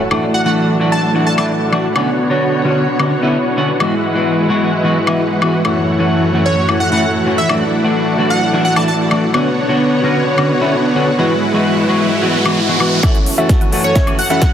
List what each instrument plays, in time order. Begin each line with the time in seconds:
Already playing: sub drop
0.11 clean electric guitar E3 A3 D4 F#4, string section E3 F#3 D4, supersaw synth A3 E4 F#4 D5 F#5, high woodblock
0.34 digital synth lead F#5
0.45 clean electric guitar E3 A3 D4 F#4, digital synth lead F#5
0.80 clean electric guitar E3 A3 D4 F#4
0.92 digital synth lead A5
1.14 clean electric guitar E3 A3 D4 F#4
1.27 digital synth lead A5
1.37 clean electric guitar E3 A3 D4 E4, digital synth lead A5, high woodblock
1.72 clean electric guitar E3 A3 D4 F#4, high woodblock
1.95 clean electric guitar D3 B3 C#4 F#4, string section D3 B3 C#5, supersaw synth B3 D4 F#4 C#5 F#5, high woodblock
2.29 clean electric guitar D3 B3 F#4 C#5
2.64 clean electric guitar D3 B3 C#4 F#4
2.99 clean electric guitar D3 B3 C#4 F#4, high woodblock
3.22 clean electric guitar D3 B3 C#4 E4
3.57 clean electric guitar D3 B3 C#4 F#4
3.80 clean electric guitar E3 G#3 B3 F#4, string section E3 F#3 G#3, supersaw synth G#3 E4 F#4 B4 F#5, high woodblock
4.14 clean electric guitar E3 G#3 B3 F#4
4.49 clean electric guitar E3 G#3 B3 F#4
4.84 clean electric guitar E3 G#3 B3 F#4
5.07 clean electric guitar E3 G#3 B3 E4, high woodblock
5.41 clean electric guitar E3 G#3 B3 F#4, high woodblock
5.64 string section F#2 A3, clean electric guitar E3 A3 C#4 F#4, supersaw synth A3 E4 F#4 C#5 F#5, high woodblock
5.99 clean electric guitar E3 A3 C#4 F#4
6.33 clean electric guitar E3 A3 C#4 F#4
6.46 digital synth lead C#5
6.68 clean electric guitar E3 A3 C#4 F#4, high woodblock
6.80 digital synth lead F#5
6.91 clean electric guitar E3 A3 C#4 E4, digital synth lead F#5
7.26 clean electric guitar E3 A3 C#4 F#4
7.38 digital synth lead E5
7.49 clean electric guitar E3 A3 D4 F#4, string section F#3 D4, supersaw synth A3 E4 F#4 D5 F#5, high woodblock
7.83 clean electric guitar E3 A3 D4 F#4
8.18 clean electric guitar E3 A3 D4 F#4
8.30 digital synth lead F#5
8.53 clean electric guitar E3 A3 D4 F#4
8.65 digital synth lead F#5
8.76 clean electric guitar E3 A3 D4 E4, digital synth lead A5, high woodblock
8.88 digital synth lead A5
9.10 clean electric guitar E3 A3 D4 F#4, high woodblock
9.33 clean electric guitar D3 B3 C#4 F#4, string section D3 B3 C#5, supersaw synth B3 D4 F#4 C#5 F#5, riser, high woodblock
9.68 clean electric guitar D3 B3 F#4 C#5
10.03 clean electric guitar D3 B3 C#4 F#4
10.37 clean electric guitar D3 B3 C#4 F#4, high woodblock
10.60 clean electric guitar D3 B3 C#4 E4
10.95 clean electric guitar D3 B3 C#4 F#4
11.18 clean electric guitar E3 G#3 B3 F#4, string section F#3 G#3 E4, supersaw synth G#3 E4 F#4 B4 F#5
11.53 clean electric guitar E3 G#3 B3 F#4
11.87 clean electric guitar E3 G#3 B3 F#4
12.22 clean electric guitar E3 G#3 B3 F#4
12.45 clean electric guitar E3 G#3 B3 F#4, high woodblock
12.68 clean electric guitar E3 G#3 B3 F#4
12.79 clean electric guitar E3 G#3 B3 F#4, high woodblock
13.03 string section F#2 E3 A4, clean electric guitar E3 A3 C#4 F#4, supersaw synth C#4 E4 F#4 A4 E5, synth pluck E5, kick, snare, closed hi-hat, riser, high woodblock
13.15 closed hi-hat
13.26 open hi-hat
13.37 clean electric guitar E3 A3 C#4 F#4, supersaw synth C#4 E4 F#4 A4 E5, synth pluck E5, closed hi-hat
13.49 kick, snare, closed hi-hat
13.61 supersaw synth C#4 E4 F#4 A4 F#5, synth pluck F#5, closed hi-hat
13.72 clean electric guitar E3 A3 C#4 F#4, open hi-hat
13.84 digital synth lead C#5, closed hi-hat
13.96 supersaw synth C#4 E4 F#4 A4 E5, synth pluck E5, kick, snare, closed hi-hat
14.06 clean electric guitar E3 A3 C#4 F#4, closed hi-hat, high woodblock
14.19 digital synth lead F#5, open hi-hat
14.30 clean electric guitar E3 A3 C#4 E4, supersaw synth C#4 E4 F#4 A4 E5, synth pluck E5, digital synth lead F#5, closed hi-hat
14.42 kick, snare, closed hi-hat